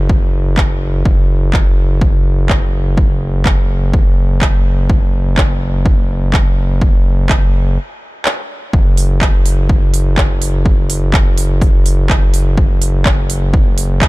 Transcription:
Already playing: analog synth bass F#1
0.10 kick
0.57 kick, clap
1.05 analog synth bass F#1, kick
1.53 kick, clap
2.01 kick
2.49 kick, clap
2.97 kick
3.46 kick, clap
3.94 kick
4.42 kick, clap
4.90 kick
5.38 kick, clap
5.86 kick
6.34 kick, clap
6.82 kick
7.29 kick, clap
8.26 clap
8.73 analog synth bass F#1, kick
8.98 open hi-hat
9.21 kick, clap
9.46 open hi-hat
9.69 kick
9.94 open hi-hat
10.18 kick, clap
10.42 open hi-hat
10.66 kick
10.90 open hi-hat
11.14 kick, clap
11.38 open hi-hat
11.62 kick, open hi-hat
11.86 open hi-hat
12.10 kick, clap
12.34 open hi-hat
12.58 kick
12.82 open hi-hat
13.06 kick, clap
13.30 open hi-hat
13.54 kick
13.78 open hi-hat
14.02 kick, clap

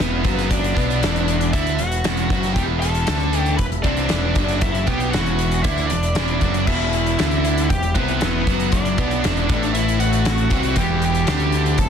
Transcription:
Already playing: distorted electric guitar E2, tonewheel organ E3 B3 E4 B4, lead electric guitar B3 B4
0.00 picked electric bass E1, distorted electric guitar E3, snare
0.24 picked electric bass F#1, distorted electric guitar F#2 F#3, kick, closed hi-hat
0.38 snare, closed hi-hat
0.51 lead electric guitar D4 D5, kick, closed hi-hat
0.64 closed hi-hat
0.75 picked electric bass B1, distorted electric guitar B2 B3, kick, closed hi-hat
0.90 closed hi-hat
1.02 picked electric bass E1, distorted electric guitar E2 E3, snare, closed hi-hat
1.16 closed hi-hat
1.28 closed hi-hat
1.41 closed hi-hat
1.53 picked electric bass D2, distorted electric guitar D3 D4, lead electric guitar E4 E5, kick, closed hi-hat
1.67 closed hi-hat
1.77 picked electric bass E1, distorted electric guitar E2, lead electric guitar F#5, closed hi-hat
1.81 lead electric guitar F#4
1.92 closed hi-hat
2.04 picked electric bass E1, distorted electric guitar E2 E3, snare, closed hi-hat
2.17 closed hi-hat
2.30 picked electric bass F#1, distorted electric guitar F#2 F#3, kick, closed hi-hat
2.43 snare, closed hi-hat
2.54 picked electric bass E1, distorted electric guitar E2 E3, lead electric guitar G4 G5, kick, closed hi-hat
2.80 lead electric guitar A4 A5, closed hi-hat
2.95 closed hi-hat
3.06 picked electric bass D2, distorted electric guitar D3 D4, snare, closed hi-hat
3.20 closed hi-hat
3.33 closed hi-hat
3.39 lead electric guitar G5
3.46 closed hi-hat
3.57 picked electric bass E1, distorted electric guitar E2, lead electric guitar B4 B5, kick, closed hi-hat
3.72 closed hi-hat
3.83 picked electric bass C2, distorted electric guitar C3 C4, lead electric guitar D4 D5, kick, closed hi-hat
3.97 closed hi-hat
4.09 picked electric bass E1, distorted electric guitar E2 E3, snare, closed hi-hat
4.35 picked electric bass F#1, distorted electric guitar F#2 F#3, kick, closed hi-hat
4.49 snare, closed hi-hat
4.61 lead electric guitar E5, kick, closed hi-hat
4.66 lead electric guitar E4
4.75 closed hi-hat
4.87 picked electric bass B1, distorted electric guitar B2 B3, lead electric guitar G4 G5, kick, closed hi-hat
5.00 closed hi-hat
5.11 picked electric bass E1, distorted electric guitar E2, lead electric guitar F#4 F#5, snare, closed hi-hat
5.15 distorted electric guitar E3
5.26 closed hi-hat
5.39 closed hi-hat
5.51 closed hi-hat
5.63 picked electric bass D2, distorted electric guitar D3 D4, lead electric guitar E5, kick, closed hi-hat
5.67 lead electric guitar E4
5.78 closed hi-hat
5.87 picked electric bass E1, lead electric guitar D5, closed hi-hat
5.91 distorted electric guitar E2, lead electric guitar D4
6.03 closed hi-hat
6.15 picked electric bass E1, distorted electric guitar E2 E3, snare, closed hi-hat
6.28 closed hi-hat
6.41 picked electric bass F#1, distorted electric guitar F#2 F#3, kick, closed hi-hat
6.54 closed hi-hat
6.67 picked electric bass E1, distorted electric guitar E2 E3, lead electric guitar E4 E5, kick, crash
6.93 closed hi-hat
7.06 closed hi-hat
7.19 picked electric bass D2, distorted electric guitar D3 D4, snare, closed hi-hat
7.31 closed hi-hat
7.45 closed hi-hat
7.58 closed hi-hat
7.69 picked electric bass E1, distorted electric guitar E2, lead electric guitar G5, kick, closed hi-hat
7.74 lead electric guitar G4
7.83 closed hi-hat
7.94 picked electric bass C2, distorted electric guitar C3 C4, lead electric guitar B4, kick, closed hi-hat
7.98 lead electric guitar B3
8.08 closed hi-hat
8.19 picked electric bass E1, distorted electric guitar E2 E3, snare, closed hi-hat
8.45 picked electric bass F#1, distorted electric guitar F#2 F#3, kick, closed hi-hat
8.60 closed hi-hat
8.72 lead electric guitar D4 D5, kick, closed hi-hat
8.85 closed hi-hat
8.97 picked electric bass B1, distorted electric guitar B2 B3, kick, closed hi-hat
9.11 closed hi-hat
9.23 picked electric bass E1, distorted electric guitar E2 E3, snare, closed hi-hat
9.37 closed hi-hat
9.48 picked electric bass A1, distorted electric guitar A2 A3, kick, closed hi-hat
9.63 closed hi-hat
9.73 lead electric guitar E4 E5, closed hi-hat
9.88 closed hi-hat
9.99 lead electric guitar F#5, closed hi-hat
10.03 lead electric guitar F#4
10.13 closed hi-hat
10.25 snare, closed hi-hat
10.38 closed hi-hat
10.49 picked electric bass C2, distorted electric guitar C3 C4, kick, closed hi-hat
10.63 closed hi-hat
10.76 picked electric bass E1, distorted electric guitar E2 E3, lead electric guitar G5, kick, closed hi-hat
10.81 lead electric guitar G4
11.02 lead electric guitar G5, closed hi-hat
11.06 lead electric guitar G4
11.14 closed hi-hat
11.27 picked electric bass D2, distorted electric guitar D3 D4, snare, closed hi-hat
11.40 closed hi-hat
11.52 closed hi-hat
11.66 closed hi-hat
11.78 picked electric bass E1, distorted electric guitar E2, lead electric guitar A4 A5, kick, closed hi-hat

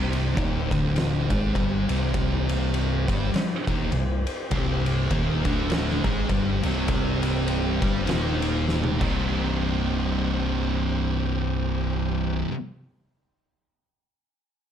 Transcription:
Already playing: fingered electric bass C1, distorted electric guitar C2 C3, tonewheel organ C4 G4 C5
0.13 ride
0.37 fingered electric bass D#1, distorted electric guitar D#2 D#3, kick, ride
0.71 fingered electric bass D1, distorted electric guitar D2 D3, kick, ride
0.96 snare, ride
1.30 fingered electric bass G#1, distorted electric guitar G#2 G#3, kick, ride
1.55 fingered electric bass G1, distorted electric guitar G2 G3, kick, ride
1.89 fingered electric bass C1, distorted electric guitar C2 C3, ride
2.14 kick, ride
2.49 ride
2.74 ride
3.08 fingered electric bass G1, distorted electric guitar G2 G3, kick, ride
3.33 muted fingered electric bass stroke, muted distorted electric guitar stroke, snare, ride
3.67 fingered electric bass D#1, distorted electric guitar D#2 D#3, kick, ride
3.92 fingered electric bass C1, distorted electric guitar C2, ride
4.27 ride
4.51 fingered electric bass C1, distorted electric guitar C2 C3, kick, ride
4.86 ride
5.11 fingered electric bass D#1, distorted electric guitar D#2 D#3, kick, ride
5.45 fingered electric bass D1, distorted electric guitar D2 D3, kick, ride
5.70 snare, ride
5.89 snare
6.04 fingered electric bass G#1, distorted electric guitar G#2 G#3, kick, ride
6.29 fingered electric bass G1, distorted electric guitar G2 G3, kick, ride
6.63 fingered electric bass C1, distorted electric guitar C2 C3, ride
6.88 kick, ride
7.23 ride
7.48 ride
7.82 fingered electric bass G1, distorted electric guitar G2 G3, kick, ride
8.07 fingered electric bass D#1, distorted electric guitar D#2 D#3, snare, ride
8.42 ride
8.68 snare
8.84 high tom
8.99 fingered electric bass C1, distorted electric guitar C2 G2 G3, tonewheel organ C4 G4 C5, kick, crash
9.03 distorted electric guitar C3 D#4

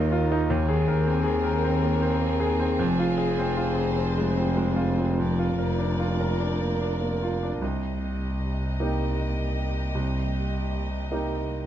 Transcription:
Already playing: grand piano D#2 A#3 D#4 F4 A#4, double bass D#2, string section D#4 F4 A#4
0.12 grand piano F4
0.32 grand piano D#4
0.49 grand piano D#2, string section C4 G#4 A#4
0.69 grand piano G#4
0.88 grand piano A#4
1.06 grand piano C4
1.24 grand piano G#4
1.44 grand piano A#4
1.63 grand piano C4
1.83 grand piano A#3
2.02 grand piano C4
2.21 grand piano A#3
2.40 grand piano G#4
2.60 grand piano C4
2.79 double bass F1, grand piano F2, string section C5
2.99 grand piano F4
3.18 grand piano G#4
3.39 grand piano C4
3.57 grand piano F4
3.76 grand piano G#4
3.96 grand piano C4
4.18 grand piano G#3
4.37 grand piano C4
4.57 grand piano G#3
4.76 grand piano F4
4.98 grand piano C4
5.18 grand piano F2, string section A#3 A#4 D5
5.39 grand piano F4
5.58 grand piano A#4
5.78 grand piano D4
5.99 grand piano F4
6.20 grand piano A#4
6.40 grand piano D4
6.60 grand piano A#3
6.81 grand piano D4
7.01 grand piano A#3
7.23 grand piano F4
7.43 grand piano D4
7.60 double bass C2, grand piano C2, string section A#3 G4 D#5
8.80 grand piano A#3 D#4 G4
9.95 grand piano C2
11.11 grand piano A#3 D#4 G4

